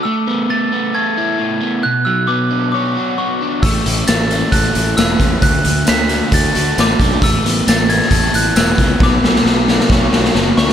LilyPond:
<<
  \new Staff \with { instrumentName = "Glockenspiel" } { \time 4/4 \key a \major \tempo 4 = 134 e'''4 a'''4 gis'''2 | fis'''8 e'''8 d'''4 d'''4 cis'''4 | e'''4 a'''4 fis'''4 e'''4 | fis'''4 b'''4 a'''4 d'''4 |
e'''4 a'''8 gis'''4 fis'''8 e'''4 | d'''2. r8 cis'''8 | }
  \new Staff \with { instrumentName = "Overdriven electric guitar" } { \time 4/4 \key a \major a8 b8 a8 b8 a'8 e'8 a8 b8 | b,8 fis8 b8 d'8 cis''8 fis'8 b8 d'8 | a8 cis'8 a8 cis'8 a'8 e'8 a8 cis'8 | d8 a8 a8 d'8 a'8 fis'8 a8 d'8 |
a8 b8 a8 b8 a'8 e'8 a8 b8 | b,8 fis8 b8 d'8 cis''8 fis'8 b8 d'8 | }
  \new Staff \with { instrumentName = "Fingered electric bass" } { \clef bass \time 4/4 \key a \major r1 | r1 | a,,8 a,,8 a,,4 a,,8 a,,8 e,,8 e,8 | d,8 d,8 d,4 d,8 d,8 a,,8 b,,8 |
a,,8 a,,8 a,,4 a,,8 a,,8 e,,8 cis,8 | b,,8 b,,8 b,,4 b,,8 b,,8 fis,,8 d,8 | }
  \new DrumStaff \with { instrumentName = "Drums" } \drummode { \time 4/4 r4 r4 r4 r4 | r4 r4 r4 r4 | <hh bd>8 hh8 <hh sn tamb>8 hh8 <hh bd>8 hh8 <hh sn tamb>8 <hh bd>8 | <hh bd>8 hh8 <hh sn tamb>8 hh8 <hh bd>8 hh8 <hh sn tamb>8 <hh bd>8 |
<hh bd>8 hh8 <hh sn tamb>8 hh16 sn16 <hh bd>8 hh8 <hh sn tamb>8 <hh bd>8 | <bd sn>8 sn16 sn16 sn8 sn16 sn16 <bd sn>8 sn16 sn16 sn8 sn16 sn16 | }
>>